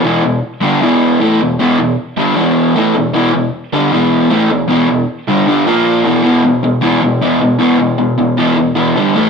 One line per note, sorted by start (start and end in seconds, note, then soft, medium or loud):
0.04 0.22 E2 medium
0.04 0.23 B2 medium
0.04 0.23 E3 loud
0.23 0.39 E2 medium
0.23 0.39 B2 medium
0.61 0.80 G2 medium
0.61 0.81 D3 loud
0.61 0.81 G3 loud
0.81 1.20 E2 medium
0.81 1.20 B2 medium
0.81 1.20 E3 loud
1.20 1.39 A2 loud
1.20 1.40 E3 loud
1.20 1.40 A3 loud
1.41 1.56 E2 medium
1.41 1.56 B2 medium
1.59 1.78 E2 medium
1.59 1.78 B2 loud
1.59 1.79 E3 medium
1.79 1.94 E2 medium
1.79 1.94 B2 medium
2.17 2.35 G2 medium
2.17 2.36 D3 loud
2.17 2.37 G3 loud
2.36 2.74 E2 loud
2.36 2.74 B2 loud
2.36 2.75 E3 loud
2.75 2.94 A2 loud
2.75 2.95 E3 loud
2.75 2.95 A3 loud
2.95 3.10 E2 medium
2.95 3.10 B2 medium
3.14 3.32 E2 loud
3.14 3.32 B2 loud
3.14 3.34 E3 loud
3.33 3.49 E2 medium
3.33 3.49 B2 medium
3.73 3.91 G2 loud
3.73 3.92 D3 loud
3.73 3.92 G3 loud
3.92 4.30 E2 loud
3.92 4.29 B2 loud
3.92 4.29 E3 loud
4.30 4.49 A2 medium
4.30 4.49 E3 medium
4.30 4.49 A3 medium
4.50 4.66 E2 medium
4.50 4.66 B2 medium
4.68 4.87 E2 loud
4.68 4.88 B2 loud
4.68 4.89 E3 loud
4.89 5.04 E2 medium
4.89 5.04 B2 medium
5.28 5.46 G2 medium
5.28 5.47 D3 loud
5.28 5.47 G3 loud
5.47 5.66 G2 medium
5.47 5.66 D3 loud
5.47 5.67 G3 loud
5.66 6.04 A#2 medium
5.66 6.05 F3 medium
5.66 6.05 A#3 loud
6.05 6.22 E2 medium
6.05 6.23 B2 medium
6.05 6.24 E3 loud
6.23 6.42 E2 medium
6.23 6.43 B2 medium
6.23 6.43 E3 medium
6.44 6.62 E2 medium
6.44 6.62 B2 medium
6.63 6.80 E2 medium
6.63 6.81 B2 medium
6.81 7.00 E2 medium
6.81 7.01 B2 medium
6.81 7.01 E3 loud
7.02 7.20 E2 medium
7.02 7.20 B2 loud
7.22 7.40 E2 medium
7.22 7.41 B2 medium
7.22 7.41 E3 medium
7.41 7.58 E2 medium
7.41 7.58 B2 medium
7.59 7.78 E2 medium
7.59 7.78 B2 medium
7.59 7.79 E3 medium
7.79 7.97 E2 medium
7.79 7.97 B2 medium
7.98 8.16 E2 medium
7.98 8.16 B2 medium
8.18 8.36 E2 medium
8.18 8.36 B2 medium
8.38 8.55 E2 medium
8.38 8.56 B2 loud
8.38 8.57 E3 medium
8.57 8.74 E2 medium
8.57 8.74 B2 medium
8.76 8.95 E2 medium
8.76 8.95 B2 loud
8.76 8.95 E3 loud
8.96 9.14 G2 medium
8.96 9.15 D3 loud
8.96 9.15 G3 loud
9.15 9.30 A2 medium
9.15 9.30 E3 medium
9.15 9.30 A3 medium